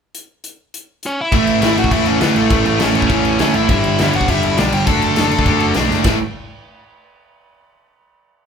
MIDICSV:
0, 0, Header, 1, 5, 480
1, 0, Start_track
1, 0, Tempo, 294695
1, 241, Time_signature, 4, 2, 24, 8
1, 13780, End_track
2, 0, Start_track
2, 0, Title_t, "Lead electric guitar"
2, 0, Program_c, 0, 29
2, 1725, Note_on_c, 0, 61, 74
2, 1734, Note_on_c, 0, 73, 91
2, 1927, Note_off_c, 0, 61, 0
2, 1932, Note_off_c, 0, 73, 0
2, 1967, Note_on_c, 0, 64, 67
2, 1976, Note_on_c, 0, 76, 82
2, 2168, Note_off_c, 0, 64, 0
2, 2185, Note_off_c, 0, 76, 0
2, 2203, Note_on_c, 0, 76, 90
2, 2205, Note_on_c, 0, 64, 68
2, 2852, Note_off_c, 0, 64, 0
2, 2907, Note_on_c, 0, 66, 77
2, 2913, Note_on_c, 0, 78, 88
2, 2925, Note_off_c, 0, 76, 0
2, 3119, Note_off_c, 0, 66, 0
2, 3135, Note_on_c, 0, 76, 87
2, 3142, Note_off_c, 0, 78, 0
2, 3148, Note_on_c, 0, 64, 63
2, 3356, Note_off_c, 0, 64, 0
2, 3382, Note_off_c, 0, 76, 0
2, 3382, Note_on_c, 0, 61, 69
2, 3382, Note_on_c, 0, 73, 82
2, 3598, Note_off_c, 0, 61, 0
2, 3611, Note_off_c, 0, 73, 0
2, 3619, Note_on_c, 0, 71, 76
2, 3622, Note_on_c, 0, 59, 64
2, 3834, Note_off_c, 0, 59, 0
2, 3845, Note_on_c, 0, 57, 63
2, 3856, Note_on_c, 0, 69, 74
2, 3860, Note_off_c, 0, 71, 0
2, 4294, Note_off_c, 0, 57, 0
2, 4312, Note_off_c, 0, 69, 0
2, 4326, Note_on_c, 0, 57, 73
2, 4338, Note_on_c, 0, 69, 80
2, 4552, Note_off_c, 0, 57, 0
2, 4575, Note_on_c, 0, 61, 66
2, 4576, Note_off_c, 0, 69, 0
2, 4579, Note_on_c, 0, 73, 72
2, 4796, Note_off_c, 0, 61, 0
2, 4810, Note_off_c, 0, 73, 0
2, 4829, Note_on_c, 0, 61, 86
2, 4835, Note_on_c, 0, 73, 99
2, 5493, Note_off_c, 0, 61, 0
2, 5530, Note_off_c, 0, 73, 0
2, 5554, Note_on_c, 0, 61, 79
2, 5556, Note_on_c, 0, 73, 71
2, 5768, Note_off_c, 0, 61, 0
2, 5781, Note_off_c, 0, 73, 0
2, 5781, Note_on_c, 0, 76, 98
2, 5799, Note_on_c, 0, 64, 72
2, 6010, Note_off_c, 0, 64, 0
2, 6010, Note_off_c, 0, 76, 0
2, 6030, Note_on_c, 0, 76, 108
2, 6046, Note_on_c, 0, 64, 83
2, 6693, Note_off_c, 0, 76, 0
2, 6702, Note_off_c, 0, 64, 0
2, 6768, Note_on_c, 0, 78, 102
2, 6786, Note_on_c, 0, 66, 85
2, 6976, Note_off_c, 0, 78, 0
2, 6986, Note_off_c, 0, 66, 0
2, 6998, Note_on_c, 0, 76, 101
2, 7010, Note_on_c, 0, 64, 76
2, 7442, Note_off_c, 0, 64, 0
2, 7473, Note_off_c, 0, 76, 0
2, 7479, Note_on_c, 0, 74, 101
2, 7486, Note_on_c, 0, 62, 77
2, 7692, Note_off_c, 0, 74, 0
2, 7696, Note_off_c, 0, 62, 0
2, 7711, Note_on_c, 0, 79, 99
2, 7721, Note_on_c, 0, 67, 80
2, 7924, Note_off_c, 0, 79, 0
2, 7931, Note_on_c, 0, 81, 91
2, 7933, Note_off_c, 0, 67, 0
2, 7942, Note_on_c, 0, 69, 81
2, 9310, Note_off_c, 0, 81, 0
2, 9316, Note_off_c, 0, 69, 0
2, 13780, End_track
3, 0, Start_track
3, 0, Title_t, "Distorted electric guitar"
3, 0, Program_c, 1, 30
3, 2154, Note_on_c, 1, 45, 84
3, 2161, Note_on_c, 1, 52, 88
3, 2172, Note_on_c, 1, 57, 99
3, 2625, Note_off_c, 1, 57, 0
3, 2631, Note_on_c, 1, 57, 109
3, 2632, Note_off_c, 1, 52, 0
3, 2639, Note_on_c, 1, 52, 92
3, 2644, Note_off_c, 1, 45, 0
3, 2650, Note_on_c, 1, 45, 90
3, 3086, Note_off_c, 1, 45, 0
3, 3099, Note_off_c, 1, 52, 0
3, 3106, Note_off_c, 1, 57, 0
3, 3106, Note_on_c, 1, 45, 74
3, 3119, Note_on_c, 1, 52, 90
3, 3126, Note_on_c, 1, 57, 93
3, 3577, Note_off_c, 1, 57, 0
3, 3588, Note_off_c, 1, 52, 0
3, 3597, Note_on_c, 1, 57, 83
3, 3598, Note_off_c, 1, 45, 0
3, 3608, Note_on_c, 1, 52, 72
3, 3617, Note_on_c, 1, 45, 70
3, 4066, Note_off_c, 1, 45, 0
3, 4075, Note_off_c, 1, 52, 0
3, 4080, Note_off_c, 1, 57, 0
3, 4086, Note_on_c, 1, 45, 83
3, 4095, Note_on_c, 1, 52, 84
3, 4099, Note_on_c, 1, 57, 87
3, 4539, Note_off_c, 1, 57, 0
3, 4551, Note_off_c, 1, 52, 0
3, 4559, Note_on_c, 1, 57, 108
3, 4560, Note_off_c, 1, 45, 0
3, 4571, Note_on_c, 1, 52, 103
3, 4580, Note_on_c, 1, 45, 88
3, 5028, Note_off_c, 1, 45, 0
3, 5039, Note_off_c, 1, 52, 0
3, 5043, Note_off_c, 1, 57, 0
3, 5048, Note_on_c, 1, 45, 89
3, 5059, Note_on_c, 1, 52, 87
3, 5063, Note_on_c, 1, 57, 100
3, 5517, Note_off_c, 1, 57, 0
3, 5531, Note_off_c, 1, 52, 0
3, 5536, Note_on_c, 1, 57, 99
3, 5543, Note_off_c, 1, 45, 0
3, 5550, Note_on_c, 1, 52, 87
3, 5562, Note_on_c, 1, 45, 71
3, 6001, Note_off_c, 1, 57, 0
3, 6005, Note_off_c, 1, 45, 0
3, 6005, Note_on_c, 1, 43, 93
3, 6008, Note_off_c, 1, 52, 0
3, 6011, Note_on_c, 1, 50, 76
3, 6025, Note_on_c, 1, 55, 89
3, 6466, Note_off_c, 1, 55, 0
3, 6476, Note_off_c, 1, 50, 0
3, 6485, Note_on_c, 1, 55, 127
3, 6488, Note_off_c, 1, 43, 0
3, 6496, Note_on_c, 1, 50, 111
3, 6507, Note_on_c, 1, 43, 92
3, 6955, Note_off_c, 1, 43, 0
3, 6962, Note_off_c, 1, 50, 0
3, 6974, Note_off_c, 1, 55, 0
3, 6974, Note_on_c, 1, 43, 87
3, 6982, Note_on_c, 1, 50, 91
3, 6994, Note_on_c, 1, 55, 90
3, 7431, Note_off_c, 1, 55, 0
3, 7438, Note_off_c, 1, 50, 0
3, 7450, Note_off_c, 1, 43, 0
3, 7450, Note_on_c, 1, 55, 99
3, 7457, Note_on_c, 1, 50, 78
3, 7470, Note_on_c, 1, 43, 79
3, 7916, Note_off_c, 1, 50, 0
3, 7920, Note_off_c, 1, 55, 0
3, 7930, Note_off_c, 1, 43, 0
3, 7935, Note_on_c, 1, 50, 88
3, 7945, Note_on_c, 1, 57, 84
3, 7959, Note_on_c, 1, 62, 96
3, 8403, Note_off_c, 1, 62, 0
3, 8412, Note_off_c, 1, 57, 0
3, 8420, Note_off_c, 1, 50, 0
3, 8423, Note_on_c, 1, 62, 104
3, 8432, Note_on_c, 1, 57, 104
3, 8440, Note_on_c, 1, 50, 87
3, 8873, Note_off_c, 1, 50, 0
3, 8887, Note_off_c, 1, 57, 0
3, 8893, Note_on_c, 1, 50, 82
3, 8894, Note_off_c, 1, 62, 0
3, 8906, Note_on_c, 1, 57, 91
3, 8913, Note_on_c, 1, 62, 91
3, 9347, Note_off_c, 1, 62, 0
3, 9362, Note_off_c, 1, 57, 0
3, 9366, Note_on_c, 1, 62, 100
3, 9368, Note_off_c, 1, 50, 0
3, 9381, Note_on_c, 1, 57, 77
3, 9387, Note_on_c, 1, 50, 73
3, 9838, Note_off_c, 1, 62, 0
3, 9841, Note_off_c, 1, 50, 0
3, 9845, Note_off_c, 1, 57, 0
3, 9847, Note_on_c, 1, 45, 78
3, 9854, Note_on_c, 1, 52, 96
3, 9869, Note_on_c, 1, 57, 106
3, 10044, Note_off_c, 1, 45, 0
3, 10048, Note_off_c, 1, 52, 0
3, 10055, Note_off_c, 1, 57, 0
3, 13780, End_track
4, 0, Start_track
4, 0, Title_t, "Picked electric bass"
4, 0, Program_c, 2, 34
4, 2147, Note_on_c, 2, 33, 92
4, 2344, Note_off_c, 2, 33, 0
4, 2405, Note_on_c, 2, 33, 80
4, 2595, Note_off_c, 2, 33, 0
4, 2631, Note_on_c, 2, 33, 83
4, 2827, Note_off_c, 2, 33, 0
4, 2875, Note_on_c, 2, 33, 89
4, 3069, Note_off_c, 2, 33, 0
4, 3111, Note_on_c, 2, 33, 86
4, 3307, Note_off_c, 2, 33, 0
4, 3357, Note_on_c, 2, 33, 90
4, 3551, Note_off_c, 2, 33, 0
4, 3599, Note_on_c, 2, 38, 95
4, 3792, Note_off_c, 2, 38, 0
4, 3851, Note_on_c, 2, 33, 81
4, 4040, Note_off_c, 2, 33, 0
4, 4080, Note_on_c, 2, 33, 86
4, 4274, Note_off_c, 2, 33, 0
4, 4328, Note_on_c, 2, 33, 93
4, 4519, Note_off_c, 2, 33, 0
4, 4569, Note_on_c, 2, 33, 90
4, 4760, Note_off_c, 2, 33, 0
4, 4810, Note_on_c, 2, 33, 95
4, 5001, Note_off_c, 2, 33, 0
4, 5042, Note_on_c, 2, 33, 91
4, 5237, Note_off_c, 2, 33, 0
4, 5299, Note_on_c, 2, 33, 93
4, 5487, Note_off_c, 2, 33, 0
4, 5541, Note_on_c, 2, 38, 105
4, 5729, Note_off_c, 2, 38, 0
4, 5779, Note_on_c, 2, 33, 84
4, 5968, Note_off_c, 2, 33, 0
4, 6005, Note_on_c, 2, 31, 89
4, 6200, Note_off_c, 2, 31, 0
4, 6254, Note_on_c, 2, 31, 82
4, 6446, Note_off_c, 2, 31, 0
4, 6503, Note_on_c, 2, 31, 103
4, 6691, Note_off_c, 2, 31, 0
4, 6745, Note_on_c, 2, 31, 91
4, 6933, Note_off_c, 2, 31, 0
4, 6975, Note_on_c, 2, 31, 99
4, 7167, Note_off_c, 2, 31, 0
4, 7211, Note_on_c, 2, 31, 91
4, 7405, Note_off_c, 2, 31, 0
4, 7450, Note_on_c, 2, 35, 91
4, 7644, Note_off_c, 2, 35, 0
4, 7685, Note_on_c, 2, 31, 82
4, 7881, Note_off_c, 2, 31, 0
4, 7932, Note_on_c, 2, 30, 101
4, 8126, Note_off_c, 2, 30, 0
4, 8179, Note_on_c, 2, 30, 90
4, 8370, Note_off_c, 2, 30, 0
4, 8423, Note_on_c, 2, 30, 90
4, 8613, Note_off_c, 2, 30, 0
4, 8655, Note_on_c, 2, 30, 82
4, 8848, Note_off_c, 2, 30, 0
4, 8885, Note_on_c, 2, 30, 91
4, 9082, Note_off_c, 2, 30, 0
4, 9125, Note_on_c, 2, 30, 94
4, 9322, Note_off_c, 2, 30, 0
4, 9371, Note_on_c, 2, 35, 92
4, 9565, Note_off_c, 2, 35, 0
4, 9600, Note_on_c, 2, 30, 92
4, 9798, Note_off_c, 2, 30, 0
4, 9848, Note_on_c, 2, 33, 85
4, 10075, Note_off_c, 2, 33, 0
4, 13780, End_track
5, 0, Start_track
5, 0, Title_t, "Drums"
5, 238, Note_on_c, 9, 42, 57
5, 401, Note_off_c, 9, 42, 0
5, 714, Note_on_c, 9, 42, 55
5, 877, Note_off_c, 9, 42, 0
5, 1206, Note_on_c, 9, 42, 60
5, 1369, Note_off_c, 9, 42, 0
5, 1675, Note_on_c, 9, 42, 56
5, 1838, Note_off_c, 9, 42, 0
5, 2153, Note_on_c, 9, 49, 81
5, 2154, Note_on_c, 9, 36, 115
5, 2316, Note_off_c, 9, 49, 0
5, 2317, Note_off_c, 9, 36, 0
5, 2397, Note_on_c, 9, 49, 64
5, 2560, Note_off_c, 9, 49, 0
5, 2636, Note_on_c, 9, 49, 87
5, 2654, Note_on_c, 9, 38, 115
5, 2799, Note_off_c, 9, 49, 0
5, 2817, Note_off_c, 9, 38, 0
5, 2891, Note_on_c, 9, 49, 62
5, 2998, Note_on_c, 9, 36, 84
5, 3054, Note_off_c, 9, 49, 0
5, 3116, Note_off_c, 9, 36, 0
5, 3116, Note_on_c, 9, 36, 101
5, 3117, Note_on_c, 9, 49, 79
5, 3279, Note_off_c, 9, 36, 0
5, 3280, Note_off_c, 9, 49, 0
5, 3352, Note_on_c, 9, 49, 62
5, 3514, Note_off_c, 9, 49, 0
5, 3596, Note_on_c, 9, 49, 77
5, 3613, Note_on_c, 9, 38, 114
5, 3758, Note_off_c, 9, 49, 0
5, 3776, Note_off_c, 9, 38, 0
5, 3841, Note_on_c, 9, 49, 64
5, 4003, Note_off_c, 9, 49, 0
5, 4080, Note_on_c, 9, 36, 123
5, 4083, Note_on_c, 9, 49, 87
5, 4243, Note_off_c, 9, 36, 0
5, 4246, Note_off_c, 9, 49, 0
5, 4324, Note_on_c, 9, 49, 57
5, 4487, Note_off_c, 9, 49, 0
5, 4554, Note_on_c, 9, 49, 88
5, 4572, Note_on_c, 9, 38, 120
5, 4717, Note_off_c, 9, 49, 0
5, 4735, Note_off_c, 9, 38, 0
5, 4806, Note_on_c, 9, 49, 59
5, 4924, Note_on_c, 9, 36, 84
5, 4968, Note_off_c, 9, 49, 0
5, 5041, Note_on_c, 9, 49, 69
5, 5044, Note_off_c, 9, 36, 0
5, 5044, Note_on_c, 9, 36, 90
5, 5204, Note_off_c, 9, 49, 0
5, 5207, Note_off_c, 9, 36, 0
5, 5289, Note_on_c, 9, 49, 52
5, 5451, Note_off_c, 9, 49, 0
5, 5523, Note_on_c, 9, 49, 73
5, 5541, Note_on_c, 9, 38, 115
5, 5686, Note_off_c, 9, 49, 0
5, 5704, Note_off_c, 9, 38, 0
5, 5764, Note_on_c, 9, 49, 57
5, 5927, Note_off_c, 9, 49, 0
5, 6007, Note_on_c, 9, 49, 82
5, 6010, Note_on_c, 9, 36, 117
5, 6170, Note_off_c, 9, 49, 0
5, 6173, Note_off_c, 9, 36, 0
5, 6249, Note_on_c, 9, 49, 65
5, 6412, Note_off_c, 9, 49, 0
5, 6493, Note_on_c, 9, 49, 78
5, 6511, Note_on_c, 9, 38, 117
5, 6656, Note_off_c, 9, 49, 0
5, 6674, Note_off_c, 9, 38, 0
5, 6730, Note_on_c, 9, 49, 67
5, 6855, Note_on_c, 9, 36, 81
5, 6893, Note_off_c, 9, 49, 0
5, 6976, Note_off_c, 9, 36, 0
5, 6976, Note_on_c, 9, 36, 91
5, 6980, Note_on_c, 9, 49, 82
5, 7139, Note_off_c, 9, 36, 0
5, 7143, Note_off_c, 9, 49, 0
5, 7213, Note_on_c, 9, 49, 63
5, 7376, Note_off_c, 9, 49, 0
5, 7453, Note_on_c, 9, 49, 81
5, 7471, Note_on_c, 9, 38, 120
5, 7616, Note_off_c, 9, 49, 0
5, 7634, Note_off_c, 9, 38, 0
5, 7696, Note_on_c, 9, 49, 72
5, 7859, Note_off_c, 9, 49, 0
5, 7928, Note_on_c, 9, 49, 95
5, 7934, Note_on_c, 9, 36, 110
5, 8090, Note_off_c, 9, 49, 0
5, 8096, Note_off_c, 9, 36, 0
5, 8178, Note_on_c, 9, 49, 61
5, 8340, Note_off_c, 9, 49, 0
5, 8405, Note_on_c, 9, 49, 91
5, 8423, Note_on_c, 9, 38, 126
5, 8568, Note_off_c, 9, 49, 0
5, 8586, Note_off_c, 9, 38, 0
5, 8655, Note_on_c, 9, 49, 64
5, 8774, Note_on_c, 9, 36, 97
5, 8818, Note_off_c, 9, 49, 0
5, 8888, Note_on_c, 9, 49, 79
5, 8892, Note_off_c, 9, 36, 0
5, 8892, Note_on_c, 9, 36, 102
5, 9051, Note_off_c, 9, 49, 0
5, 9055, Note_off_c, 9, 36, 0
5, 9125, Note_on_c, 9, 49, 57
5, 9287, Note_off_c, 9, 49, 0
5, 9353, Note_on_c, 9, 49, 69
5, 9371, Note_on_c, 9, 38, 120
5, 9516, Note_off_c, 9, 49, 0
5, 9534, Note_off_c, 9, 38, 0
5, 9620, Note_on_c, 9, 38, 64
5, 9783, Note_off_c, 9, 38, 0
5, 9841, Note_on_c, 9, 53, 93
5, 9849, Note_on_c, 9, 36, 106
5, 9859, Note_on_c, 9, 38, 101
5, 10004, Note_off_c, 9, 53, 0
5, 10012, Note_off_c, 9, 36, 0
5, 10022, Note_off_c, 9, 38, 0
5, 13780, End_track
0, 0, End_of_file